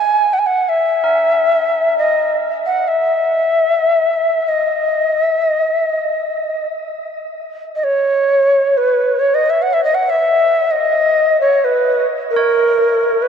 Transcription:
0.00 0.35 G#5 medium
0.33 0.40 F#5 medium
0.39 0.48 G#5 medium
0.46 0.71 F#5 medium
0.69 1.97 E5 medium
1.04 9.57 A#4 soft
1.98 2.36 D#5 medium
2.66 2.89 F#5 medium
2.88 4.50 E5 medium
4.48 5.27 D#5 medium
5.27 5.43 E5 medium
5.43 5.71 D#5 medium
5.71 5.87 E5 medium
5.87 6.65 D#5 medium
7.76 7.85 D#5 medium
7.84 8.79 C#5 medium
8.77 9.20 B4 medium
9.19 9.36 C#5 medium
9.34 9.51 D#5 medium
9.50 9.64 E5 medium
9.62 9.75 F#5 medium
9.73 9.83 E5 medium
9.84 9.96 D#5 medium
9.94 10.11 F#5 medium
10.10 10.72 E5 medium
10.71 11.40 D#5 medium
11.41 11.66 C#5 medium
11.64 12.05 B4 medium
12.31 13.24 A#4 medium
12.36 13.28 C#5 soft
13.22 13.28 B4 medium

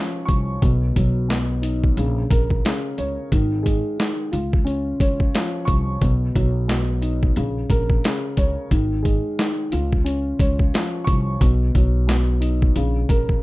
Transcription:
0.00 0.62 F3 medium
0.00 0.61 C#4 medium
0.00 0.62 F4 medium
0.00 0.62 C#5 medium
0.25 0.58 C2 medium
0.25 0.61 C#6 medium
0.25 kick loud
0.25 closed hi-hat medium
0.62 0.92 B1 loud
0.62 1.27 B2 medium
0.62 kick loud
0.62 closed hi-hat loud
0.96 1.93 B1 loud
0.96 1.97 F#3 medium
0.96 kick medium
0.96 closed hi-hat medium
1.28 1.96 B2 medium
1.28 snare loud
1.28 clap medium
1.28 closed hi-hat medium
1.62 1.96 D#4 medium
1.62 closed hi-hat medium
1.84 kick loud
1.97 2.27 A#1 loud
1.97 2.64 C#3 medium
1.97 closed hi-hat medium
2.30 2.60 A#1 medium
2.30 3.32 A#4 medium
2.30 kick loud
2.30 closed hi-hat medium
2.50 kick loud
2.65 3.32 C#3 medium
2.65 snare loud
2.65 clap medium
2.65 closed hi-hat medium
2.98 3.16 C#2 medium
2.98 3.32 C#5 medium
2.98 closed hi-hat medium
3.32 3.79 G#1 loud
3.32 3.97 D#3 medium
3.32 kick loud
3.32 closed hi-hat medium
3.63 4.32 G#3 medium
3.63 kick medium
3.63 closed hi-hat medium
3.99 4.33 D#3 medium
3.99 snare loud
3.99 clap medium
3.99 closed hi-hat medium
4.32 4.92 C#2 loud
4.32 6.01 F4 medium
4.32 closed hi-hat medium
4.53 kick loud
4.65 6.01 C#4 medium
4.65 closed hi-hat medium
5.00 5.30 C#2 medium
5.00 6.01 C#5 medium
5.00 kick loud
5.00 closed hi-hat medium
5.20 kick loud
5.34 6.02 F3 medium
5.34 snare loud
5.34 clap medium
5.34 closed hi-hat medium
5.65 5.97 C2 medium
5.65 6.00 C#6 medium
5.65 kick medium
5.65 closed hi-hat medium
6.01 6.31 B1 loud
6.01 6.66 B2 medium
6.01 kick loud
6.01 closed hi-hat medium
6.35 7.33 B1 loud
6.35 7.36 F#3 medium
6.35 kick medium
6.35 closed hi-hat medium
6.68 7.36 B2 medium
6.68 snare loud
6.68 clap medium
6.68 closed hi-hat medium
7.01 7.36 D#4 medium
7.01 closed hi-hat medium
7.23 kick loud
7.36 7.66 A#1 loud
7.36 8.04 C#3 medium
7.36 closed hi-hat medium
7.70 7.99 A#1 medium
7.70 8.71 A#4 medium
7.70 kick loud
7.70 closed hi-hat medium
7.90 kick loud
8.04 8.72 C#3 medium
8.04 snare loud
8.04 clap medium
8.04 closed hi-hat medium
8.37 8.55 C#2 medium
8.37 8.71 C#5 medium
8.37 kick medium
8.37 closed hi-hat medium
8.71 9.18 G#1 loud
8.71 9.37 D#3 medium
8.71 kick loud
8.71 closed hi-hat medium
9.03 9.71 G#3 medium
9.03 kick medium
9.03 closed hi-hat medium
9.38 9.72 D#3 medium
9.38 snare loud
9.38 clap medium
9.38 closed hi-hat medium
9.72 10.31 C#2 loud
9.72 11.41 F4 medium
9.72 closed hi-hat medium
9.93 kick loud
10.04 11.40 C#4 medium
10.04 closed hi-hat medium
10.39 10.69 C#2 medium
10.39 11.41 C#5 medium
10.39 kick loud
10.39 closed hi-hat medium
10.59 kick loud
10.74 11.41 F3 medium
10.74 snare loud
10.74 clap medium
10.74 closed hi-hat medium
11.04 11.37 C2 medium
11.04 11.40 C#6 medium
11.04 kick medium
11.04 closed hi-hat medium
11.41 11.70 B1 loud
11.41 12.06 B2 medium
11.41 kick loud
11.41 closed hi-hat loud
11.75 12.72 B1 loud
11.75 12.76 F#3 medium
11.75 kick medium
11.75 closed hi-hat medium
12.07 12.75 B2 medium
12.07 snare loud
12.07 clap medium
12.07 closed hi-hat medium
12.40 12.75 D#4 medium
12.40 closed hi-hat medium
12.62 kick loud
12.76 13.05 A#1 loud
12.76 13.43 C#3 medium
12.76 closed hi-hat medium
13.09 13.39 A#1 medium
13.09 13.43 A#4 medium
13.09 kick loud
13.09 closed hi-hat medium
13.29 kick medium

